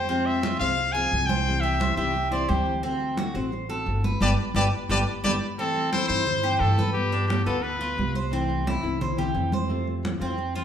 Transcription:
Already playing: F2 C5
0.08 C3 F3 G#3 C4 F4, high conga
0.26 E5, high conga
0.43 F3 G#3 C4 F4, high conga
0.59 C2 F3 G#3 C4 F4 C5 F5, high conga
0.77 muted nylon-string guitar stroke, high conga
0.92 F4 G#4 G#5, high conga
0.97 F3 G#3 C4
1.12 C2 F3 G#3 C4 F4, high conga
1.26 C5 G5, high conga
1.46 C3 E3 G3 C4 E4, high conga
1.61 G4 E5, high conga
1.80 E3 G3 C4 E4 C5, high conga
1.97 C2 E3 G3 C4 E4 G4 E5
2.15 muted nylon-string guitar stroke, high conga
2.31 E3 G3 C4 E4 C5 D5, high conga
2.48 D2 E3 G3 C4 E4 G4 C5, high conga
2.66 high conga
2.83 D3 A3 C4 F#4, high conga
3.00 high conga
3.17 D3 A3 C4 F#4, high conga
3.34 A1 A3 C4 F#4 C5, high conga
3.52 muted nylon-string guitar stroke, high conga
3.69 A3 C4 F#4 A4, high conga
3.86 G1 D3 A3 C4 F#4, high conga
4.04 B4, high conga
4.20 G1 D3 G3 B3 D4 G4 B4 D5, high conga
4.54 G1 D3 G3 B3 D4 G4 B4 D5, high conga
4.89 G1 D3 G3 B3 D4 G4 B4 D5, high conga
5.24 G1 D3 G3 B3 D4 G4 B4 D5, high conga
5.58 C3 E3 A3 C4 E4 A4, high conga
5.77 high conga
5.92 E3 A3 C4 E4 C5, high conga
6.08 G2 E3 A3 C4 E4 C5, high conga
6.26 C5, muted nylon-string guitar stroke, high conga, low conga
6.43 E3 A3 C4 E4 G4, high conga
6.60 G2 E3 A3 C4 E4 A4, high conga
6.78 B4, high conga
6.93 G3 B3 F4 G4, high conga
7.12 D4, high conga
7.28 G3 B3 F4 G4, high conga
7.45 D2 B3 F4 A4
7.63 B4, muted nylon-string guitar stroke, high conga
7.79 B3 F4, high conga
7.96 C2 G3 B3 F4, high conga
8.15 C5, high conga
8.31 C3 E3 A3 C4 E4, high conga
8.50 high conga
8.65 E3 A3 C4 E4, high conga
8.83 C2 E3 A3 C4 E4, high conga
9.00 C5, muted nylon-string guitar stroke, high conga, low conga
9.17 E3 A3 C4 E4 G4, high conga, low conga
9.34 F2 E3 A3 C4 E4, high conga
9.52 C5, high conga
9.68 C3 A3 C4 F4, high conga
9.87 high conga
10.03 E3 A3 C4 F4, high conga
10.20 F2 E3 A3 C4 F4
10.37 muted nylon-string guitar stroke, high conga
10.54 E3 A3 C4 F4, high conga

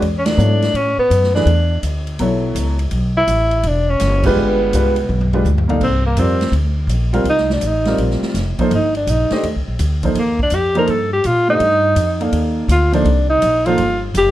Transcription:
0.02 E2, ride
0.18 C#4
0.25 D4, snare, ride
0.37 G#2 F#3 B3 E4 A4 C#5, hi-hat pedal
0.62 snare, ride
0.74 A2 C#4, ride
0.98 B3, muted upright bass stroke
1.10 F#2, hi-hat pedal, ride
1.23 snare
1.34 E3 A3 D4 G#4 B4, snare
1.46 E2, ride
1.83 D2, hi-hat pedal, ride
2.07 ride
2.19 B1 F#3 B3 E4 A4 C#5, ride
2.55 C#2, hi-hat pedal, ride
2.79 ride
2.91 B1, ride
3.17 E4
3.27 A1, hi-hat pedal, ride
3.51 ride
3.63 E1, ride
3.67 D4
3.90 C#4
4.00 F#1, snare, hi-hat pedal, ride
4.23 G#3 B3 D4 F4 G4 B4, kick, crash
4.36 G1
4.73 C2 G#3 D4 F4 G4 B4, hi-hat pedal, ride
4.96 ride
5.09 B1, floor tom
5.21 floor tom
5.33 G#3 D4 F4 G4 B4, floor tom
5.45 D2, floor tom, hi-hat pedal
5.58 floor tom
5.68 A#3 D#4 A4 D5 F5, floor tom
5.81 C2 C4, kick, crash
6.06 A#3
6.16 F2 G3 C4 F4 A#4 D5, hi-hat pedal, ride
6.41 snare, ride
6.52 D2, ride
6.87 A#1, hi-hat pedal, ride
7.13 G3 C4 F4 A#4 F5, ride
7.24 C2, ride
7.29 D#4
7.37 snare
7.50 D4, snare
7.61 A1, hi-hat pedal, ride
7.67 D#4
7.85 G3 C4 F4 A#4 D5, snare, ride
7.98 A#1, ride
8.11 snare
8.23 snare
8.34 F1, snare, hi-hat pedal, ride
8.59 F3 A#3 D#4 A4 C5, muted upright bass stroke, kick, ride
8.71 G1 D#4, ride
8.95 D4, ride
9.07 A#1 D#4, hi-hat pedal, ride
9.30 A3 D4 G4 C5 D#5, muted upright bass stroke, snare, ride
9.43 D#2, ride
9.56 C2
9.68 A#1
9.79 D2, hi-hat pedal, ride
10.03 F3 A#3 D#4 A4 C5, kick, ride
10.15 D#2 A#3, ride
10.39 D4, kick
10.50 F2, hi-hat pedal, ride
10.55 G4
10.75 F3 A#3 D#4 A4 A#4 C5, ride
10.87 G2 A4, ride
11.13 G4
11.24 A#2 F4, hi-hat pedal, ride
11.48 A3 D4 D#4 G4 C5 D#5
11.60 G2, ride
11.96 F2, hi-hat pedal, ride
12.21 A#3 D#4 A4 D5 F5, ride
12.32 D#2, ride
12.68 D2 F4, hi-hat pedal, ride
12.92 F3 A#3 D4 D#4 A4 C5, ride
13.04 C2, ride
13.30 D#4
13.42 A#1, hi-hat pedal, ride
13.66 F3 A#3 D#4 F4 A4 C5, ride
13.77 G1, ride
14.14 F1 G4, hi-hat pedal, ride

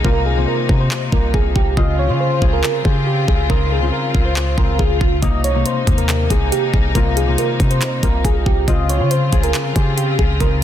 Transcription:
Already playing: C3 A#3 C4 D#4
0.04 C2 C3 A#3 F4 A#4, kick
0.26 G#4
0.36 C3 A#3 C4
0.48 A#4
0.69 C3, kick
0.80 C5
0.91 clap
1.12 C2 C3 A#3 F4 A#4, kick
1.34 C2 G#4, kick
1.55 C2 G4, kick
1.77 C#2 C#3 C4 F4 D#5, kick
1.99 C#5
2.09 C#3 C4 F4
2.20 C5
2.41 C#2 C#3 C4 G#4, kick
2.53 A#4
2.64 clap
2.84 C#3 C4 G4 G#4, kick
3.06 G4
3.28 C#2 G#4, kick
3.50 C#2 C#3 C4 D#4 A#4, kick
3.72 G#4
3.82 C#3 C4 F4
3.92 A#4
4.15 C#2, kick
4.25 C5
4.36 clap
4.57 C#2 C#3 C4 F4 A#4, kick
4.79 C#2 G#4, kick
5.01 C#2 F4, kick
5.22 C2 C3 A#3 D#4 D#5, kick, closed hi-hat
5.44 C#5, closed hi-hat
5.54 C3 A#3 D#4
5.66 C5, closed hi-hat
5.87 D#2 C3 A#3 D#4, kick, closed hi-hat
5.98 A#4, closed hi-hat
6.09 clap, closed hi-hat
6.30 C2 C3 A#3 D#4 G#4, kick, closed hi-hat
6.52 G4, closed hi-hat
6.74 C2 G#4, kick
6.95 C2 C3 A#3 F4 A#4, kick, closed hi-hat
7.17 G#4, closed hi-hat
7.27 C3 A#3 C4
7.38 A#4, closed hi-hat
7.60 C3, kick, closed hi-hat
7.71 C5, closed hi-hat
7.82 clap, closed hi-hat
8.03 C2 C3 A#3 F4 A#4, kick, closed hi-hat
8.25 C2 G#4, kick, closed hi-hat
8.46 C2 G4, kick
8.68 C#2 C#3 C4 F4 D#5, kick, closed hi-hat
8.89 C#5, closed hi-hat
9.00 C#3 C4 F4
9.11 C5, closed hi-hat
9.32 C#2 C#3 C4 G#4, kick, closed hi-hat
9.43 A#4, closed hi-hat
9.54 clap, closed hi-hat
9.75 C#3 C4 G4 G#4, kick, closed hi-hat
9.97 G4, closed hi-hat
10.19 C#2 G#4, kick
10.40 C#2 C#3 C4 D#4 A#4, kick, closed hi-hat

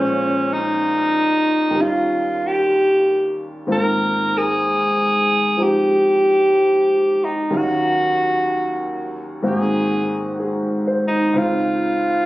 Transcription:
Already playing: A#2 F3 G#3 C#4 C5
0.53 D#4
1.71 D#2 D#3
1.76 G3 C#4
1.81 F4
2.46 G4
3.67 G#2 D#3 A#3 C4 F4
3.72 A#4
4.37 G#4
5.57 F3 G#3 C4 D#4 G4
5.63 G4
7.24 D#4
7.50 D#2 D#3 F#3 C#4 F5
7.57 F#4
9.42 G#2 D#3 A#3 C4 F#4
9.47 G#4
10.40 G#4
10.87 C5
11.08 D#4
11.34 C#2 C#3 C4 D#4
11.38 F4

